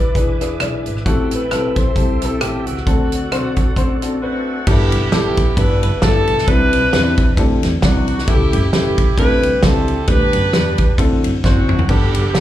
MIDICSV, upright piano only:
0, 0, Header, 1, 2, 480
1, 0, Start_track
1, 0, Key_signature, 1, "major"
1, 0, Tempo, 451467
1, 1125, Time_signature, 4, 2, 24, 8
1, 13185, End_track
2, 0, Start_track
2, 0, Title_t, "Upright piano"
2, 0, Program_c, 0, 0
2, 163, Note_on_c, 0, 62, 65
2, 168, Note_on_c, 0, 64, 57
2, 169, Note_on_c, 0, 52, 56
2, 171, Note_on_c, 0, 68, 62
2, 177, Note_on_c, 0, 71, 67
2, 341, Note_off_c, 0, 62, 0
2, 344, Note_off_c, 0, 64, 0
2, 346, Note_off_c, 0, 68, 0
2, 348, Note_off_c, 0, 71, 0
2, 429, Note_on_c, 0, 62, 75
2, 434, Note_on_c, 0, 64, 73
2, 438, Note_on_c, 0, 68, 75
2, 441, Note_on_c, 0, 71, 76
2, 571, Note_off_c, 0, 62, 0
2, 573, Note_off_c, 0, 64, 0
2, 575, Note_off_c, 0, 68, 0
2, 577, Note_off_c, 0, 71, 0
2, 641, Note_on_c, 0, 62, 80
2, 646, Note_on_c, 0, 64, 79
2, 651, Note_on_c, 0, 68, 71
2, 655, Note_on_c, 0, 74, 85
2, 874, Note_off_c, 0, 52, 0
2, 981, Note_off_c, 0, 62, 0
2, 983, Note_off_c, 0, 64, 0
2, 986, Note_off_c, 0, 68, 0
2, 988, Note_off_c, 0, 74, 0
2, 1122, Note_on_c, 0, 60, 87
2, 1123, Note_on_c, 0, 64, 85
2, 1127, Note_on_c, 0, 45, 61
2, 1128, Note_on_c, 0, 67, 76
2, 1134, Note_on_c, 0, 69, 97
2, 1462, Note_off_c, 0, 60, 0
2, 1462, Note_off_c, 0, 64, 0
2, 1465, Note_off_c, 0, 67, 0
2, 1468, Note_off_c, 0, 69, 0
2, 1602, Note_on_c, 0, 60, 67
2, 1605, Note_on_c, 0, 64, 70
2, 1609, Note_on_c, 0, 67, 63
2, 1613, Note_on_c, 0, 69, 80
2, 1834, Note_off_c, 0, 45, 0
2, 1942, Note_off_c, 0, 60, 0
2, 1944, Note_off_c, 0, 64, 0
2, 1945, Note_off_c, 0, 67, 0
2, 1948, Note_off_c, 0, 69, 0
2, 2083, Note_on_c, 0, 60, 65
2, 2086, Note_on_c, 0, 64, 64
2, 2091, Note_on_c, 0, 67, 59
2, 2092, Note_on_c, 0, 69, 80
2, 2263, Note_off_c, 0, 60, 0
2, 2265, Note_off_c, 0, 64, 0
2, 2267, Note_off_c, 0, 67, 0
2, 2268, Note_off_c, 0, 69, 0
2, 2354, Note_on_c, 0, 60, 67
2, 2356, Note_on_c, 0, 64, 56
2, 2360, Note_on_c, 0, 67, 56
2, 2365, Note_on_c, 0, 69, 69
2, 2495, Note_off_c, 0, 60, 0
2, 2496, Note_off_c, 0, 64, 0
2, 2499, Note_off_c, 0, 67, 0
2, 2501, Note_off_c, 0, 69, 0
2, 2563, Note_on_c, 0, 60, 69
2, 2567, Note_on_c, 0, 64, 61
2, 2569, Note_on_c, 0, 67, 59
2, 2576, Note_on_c, 0, 69, 74
2, 2903, Note_off_c, 0, 60, 0
2, 2905, Note_off_c, 0, 64, 0
2, 2907, Note_off_c, 0, 67, 0
2, 2910, Note_off_c, 0, 69, 0
2, 3043, Note_on_c, 0, 60, 80
2, 3047, Note_on_c, 0, 62, 80
2, 3050, Note_on_c, 0, 50, 60
2, 3052, Note_on_c, 0, 66, 73
2, 3055, Note_on_c, 0, 69, 97
2, 3384, Note_off_c, 0, 60, 0
2, 3386, Note_off_c, 0, 62, 0
2, 3388, Note_off_c, 0, 66, 0
2, 3390, Note_off_c, 0, 69, 0
2, 3521, Note_on_c, 0, 60, 81
2, 3525, Note_on_c, 0, 62, 69
2, 3531, Note_on_c, 0, 66, 75
2, 3535, Note_on_c, 0, 72, 86
2, 3757, Note_off_c, 0, 50, 0
2, 3863, Note_off_c, 0, 60, 0
2, 3865, Note_off_c, 0, 62, 0
2, 3868, Note_off_c, 0, 66, 0
2, 3870, Note_off_c, 0, 72, 0
2, 4003, Note_on_c, 0, 60, 81
2, 4008, Note_on_c, 0, 62, 68
2, 4011, Note_on_c, 0, 66, 73
2, 4015, Note_on_c, 0, 72, 89
2, 4184, Note_off_c, 0, 60, 0
2, 4187, Note_off_c, 0, 62, 0
2, 4188, Note_off_c, 0, 66, 0
2, 4190, Note_off_c, 0, 72, 0
2, 4275, Note_on_c, 0, 60, 75
2, 4279, Note_on_c, 0, 62, 70
2, 4282, Note_on_c, 0, 66, 69
2, 4287, Note_on_c, 0, 69, 78
2, 4417, Note_off_c, 0, 60, 0
2, 4419, Note_off_c, 0, 62, 0
2, 4421, Note_off_c, 0, 66, 0
2, 4423, Note_off_c, 0, 69, 0
2, 4483, Note_on_c, 0, 60, 74
2, 4489, Note_on_c, 0, 62, 65
2, 4491, Note_on_c, 0, 66, 72
2, 4496, Note_on_c, 0, 71, 90
2, 4824, Note_off_c, 0, 60, 0
2, 4827, Note_off_c, 0, 62, 0
2, 4828, Note_off_c, 0, 66, 0
2, 4831, Note_off_c, 0, 71, 0
2, 4964, Note_on_c, 0, 59, 75
2, 4964, Note_on_c, 0, 62, 60
2, 4970, Note_on_c, 0, 64, 70
2, 4971, Note_on_c, 0, 43, 59
2, 4974, Note_on_c, 0, 67, 71
2, 4974, Note_on_c, 0, 69, 81
2, 5304, Note_off_c, 0, 59, 0
2, 5304, Note_off_c, 0, 62, 0
2, 5307, Note_off_c, 0, 64, 0
2, 5309, Note_off_c, 0, 67, 0
2, 5309, Note_off_c, 0, 69, 0
2, 5443, Note_on_c, 0, 59, 80
2, 5446, Note_on_c, 0, 62, 64
2, 5450, Note_on_c, 0, 64, 74
2, 5452, Note_on_c, 0, 67, 71
2, 5456, Note_on_c, 0, 69, 88
2, 5676, Note_off_c, 0, 43, 0
2, 5784, Note_off_c, 0, 59, 0
2, 5785, Note_off_c, 0, 62, 0
2, 5787, Note_off_c, 0, 64, 0
2, 5788, Note_off_c, 0, 67, 0
2, 5790, Note_off_c, 0, 69, 0
2, 5920, Note_on_c, 0, 59, 71
2, 5923, Note_on_c, 0, 62, 64
2, 5925, Note_on_c, 0, 64, 66
2, 5927, Note_on_c, 0, 67, 63
2, 5931, Note_on_c, 0, 71, 77
2, 6262, Note_off_c, 0, 59, 0
2, 6263, Note_off_c, 0, 62, 0
2, 6264, Note_off_c, 0, 64, 0
2, 6265, Note_off_c, 0, 67, 0
2, 6267, Note_off_c, 0, 71, 0
2, 6402, Note_on_c, 0, 59, 78
2, 6405, Note_on_c, 0, 62, 72
2, 6409, Note_on_c, 0, 64, 69
2, 6412, Note_on_c, 0, 67, 67
2, 6415, Note_on_c, 0, 69, 78
2, 6742, Note_off_c, 0, 59, 0
2, 6744, Note_off_c, 0, 62, 0
2, 6746, Note_off_c, 0, 64, 0
2, 6747, Note_off_c, 0, 67, 0
2, 6749, Note_off_c, 0, 69, 0
2, 6879, Note_on_c, 0, 60, 73
2, 6881, Note_on_c, 0, 62, 68
2, 6885, Note_on_c, 0, 48, 63
2, 6885, Note_on_c, 0, 64, 66
2, 6888, Note_on_c, 0, 67, 73
2, 6890, Note_on_c, 0, 71, 73
2, 7220, Note_off_c, 0, 60, 0
2, 7221, Note_off_c, 0, 62, 0
2, 7223, Note_off_c, 0, 64, 0
2, 7225, Note_off_c, 0, 67, 0
2, 7226, Note_off_c, 0, 71, 0
2, 7363, Note_on_c, 0, 60, 83
2, 7367, Note_on_c, 0, 62, 70
2, 7368, Note_on_c, 0, 64, 69
2, 7372, Note_on_c, 0, 67, 69
2, 7374, Note_on_c, 0, 71, 84
2, 7591, Note_off_c, 0, 48, 0
2, 7702, Note_off_c, 0, 60, 0
2, 7704, Note_off_c, 0, 62, 0
2, 7704, Note_off_c, 0, 64, 0
2, 7707, Note_off_c, 0, 67, 0
2, 7707, Note_off_c, 0, 71, 0
2, 7840, Note_on_c, 0, 60, 88
2, 7844, Note_on_c, 0, 62, 86
2, 7848, Note_on_c, 0, 64, 81
2, 7850, Note_on_c, 0, 67, 83
2, 7852, Note_on_c, 0, 69, 98
2, 8180, Note_off_c, 0, 60, 0
2, 8182, Note_off_c, 0, 62, 0
2, 8184, Note_off_c, 0, 64, 0
2, 8185, Note_off_c, 0, 67, 0
2, 8186, Note_off_c, 0, 69, 0
2, 8323, Note_on_c, 0, 48, 75
2, 8323, Note_on_c, 0, 62, 69
2, 8327, Note_on_c, 0, 64, 70
2, 8329, Note_on_c, 0, 55, 71
2, 8331, Note_on_c, 0, 74, 84
2, 8661, Note_off_c, 0, 48, 0
2, 8661, Note_off_c, 0, 62, 0
2, 8663, Note_off_c, 0, 64, 0
2, 8664, Note_off_c, 0, 55, 0
2, 8665, Note_off_c, 0, 74, 0
2, 8797, Note_on_c, 0, 57, 78
2, 8798, Note_on_c, 0, 61, 71
2, 8801, Note_on_c, 0, 64, 64
2, 8804, Note_on_c, 0, 49, 66
2, 8806, Note_on_c, 0, 67, 73
2, 8806, Note_on_c, 0, 69, 78
2, 9138, Note_off_c, 0, 57, 0
2, 9138, Note_off_c, 0, 61, 0
2, 9140, Note_off_c, 0, 64, 0
2, 9142, Note_off_c, 0, 67, 0
2, 9142, Note_off_c, 0, 69, 0
2, 9275, Note_on_c, 0, 57, 74
2, 9278, Note_on_c, 0, 61, 71
2, 9281, Note_on_c, 0, 64, 72
2, 9286, Note_on_c, 0, 71, 86
2, 9287, Note_on_c, 0, 67, 77
2, 9509, Note_off_c, 0, 49, 0
2, 9616, Note_off_c, 0, 57, 0
2, 9618, Note_off_c, 0, 61, 0
2, 9620, Note_off_c, 0, 64, 0
2, 9622, Note_off_c, 0, 67, 0
2, 9622, Note_off_c, 0, 71, 0
2, 9752, Note_on_c, 0, 60, 81
2, 9754, Note_on_c, 0, 62, 66
2, 9759, Note_on_c, 0, 50, 61
2, 9759, Note_on_c, 0, 64, 69
2, 9762, Note_on_c, 0, 67, 64
2, 9764, Note_on_c, 0, 69, 87
2, 10095, Note_off_c, 0, 60, 0
2, 10096, Note_off_c, 0, 62, 0
2, 10098, Note_off_c, 0, 64, 0
2, 10100, Note_off_c, 0, 67, 0
2, 10101, Note_off_c, 0, 69, 0
2, 10238, Note_on_c, 0, 60, 74
2, 10241, Note_on_c, 0, 62, 71
2, 10243, Note_on_c, 0, 64, 70
2, 10246, Note_on_c, 0, 67, 70
2, 10250, Note_on_c, 0, 69, 84
2, 10466, Note_off_c, 0, 50, 0
2, 10577, Note_off_c, 0, 60, 0
2, 10579, Note_off_c, 0, 62, 0
2, 10580, Note_off_c, 0, 64, 0
2, 10582, Note_off_c, 0, 67, 0
2, 10584, Note_off_c, 0, 69, 0
2, 10720, Note_on_c, 0, 55, 70
2, 10722, Note_on_c, 0, 59, 68
2, 10726, Note_on_c, 0, 50, 66
2, 10727, Note_on_c, 0, 62, 72
2, 10727, Note_on_c, 0, 67, 72
2, 10733, Note_on_c, 0, 71, 80
2, 11058, Note_off_c, 0, 55, 0
2, 11059, Note_off_c, 0, 59, 0
2, 11062, Note_off_c, 0, 62, 0
2, 11062, Note_off_c, 0, 67, 0
2, 11065, Note_off_c, 0, 71, 0
2, 11198, Note_on_c, 0, 55, 73
2, 11199, Note_on_c, 0, 59, 71
2, 11205, Note_on_c, 0, 62, 67
2, 11208, Note_on_c, 0, 67, 67
2, 11210, Note_on_c, 0, 71, 85
2, 11429, Note_off_c, 0, 50, 0
2, 11537, Note_off_c, 0, 55, 0
2, 11538, Note_off_c, 0, 59, 0
2, 11541, Note_off_c, 0, 62, 0
2, 11542, Note_off_c, 0, 67, 0
2, 11543, Note_off_c, 0, 71, 0
2, 11675, Note_on_c, 0, 60, 92
2, 11678, Note_on_c, 0, 62, 78
2, 11681, Note_on_c, 0, 50, 74
2, 11682, Note_on_c, 0, 64, 80
2, 11684, Note_on_c, 0, 66, 82
2, 11686, Note_on_c, 0, 69, 96
2, 12015, Note_off_c, 0, 60, 0
2, 12017, Note_off_c, 0, 62, 0
2, 12019, Note_off_c, 0, 64, 0
2, 12020, Note_off_c, 0, 66, 0
2, 12021, Note_off_c, 0, 69, 0
2, 12162, Note_on_c, 0, 60, 73
2, 12165, Note_on_c, 0, 62, 67
2, 12168, Note_on_c, 0, 64, 68
2, 12170, Note_on_c, 0, 66, 65
2, 12172, Note_on_c, 0, 72, 76
2, 12387, Note_off_c, 0, 50, 0
2, 12499, Note_off_c, 0, 60, 0
2, 12501, Note_off_c, 0, 62, 0
2, 12502, Note_off_c, 0, 64, 0
2, 12503, Note_off_c, 0, 66, 0
2, 12504, Note_off_c, 0, 72, 0
2, 12643, Note_on_c, 0, 59, 72
2, 12646, Note_on_c, 0, 62, 66
2, 12650, Note_on_c, 0, 43, 62
2, 12651, Note_on_c, 0, 78, 68
2, 12653, Note_on_c, 0, 67, 67
2, 12655, Note_on_c, 0, 69, 83
2, 12980, Note_off_c, 0, 59, 0
2, 12981, Note_off_c, 0, 62, 0
2, 12983, Note_off_c, 0, 78, 0
2, 12984, Note_off_c, 0, 67, 0
2, 12985, Note_off_c, 0, 69, 0
2, 13118, Note_on_c, 0, 59, 82
2, 13122, Note_on_c, 0, 62, 73
2, 13122, Note_on_c, 0, 78, 70
2, 13127, Note_on_c, 0, 67, 69
2, 13131, Note_on_c, 0, 69, 83
2, 13185, Note_off_c, 0, 43, 0
2, 13185, Note_off_c, 0, 59, 0
2, 13185, Note_off_c, 0, 62, 0
2, 13185, Note_off_c, 0, 67, 0
2, 13185, Note_off_c, 0, 69, 0
2, 13185, Note_off_c, 0, 78, 0
2, 13185, End_track
0, 0, End_of_file